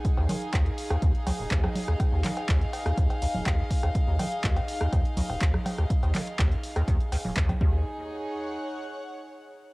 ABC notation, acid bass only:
X:1
M:4/4
L:1/16
Q:1/4=123
K:Ebm
V:1 name="Acid bass" clef=bass
z E,, E, z E,, G,, z E,, E,, z D,, E,,, E,, G,, z E,, | z E,, E, z E,, G,, z E,, E,, z D,, E,,, E,, G,, z E,, | z E,, E, z E,, G,, z E,, E,, z D,, E,,, E,, G,, z E,, | z E,, E, z E,, G,, z E,, E,, z D,, E,,, E,, G,, E,,2 |
z16 |]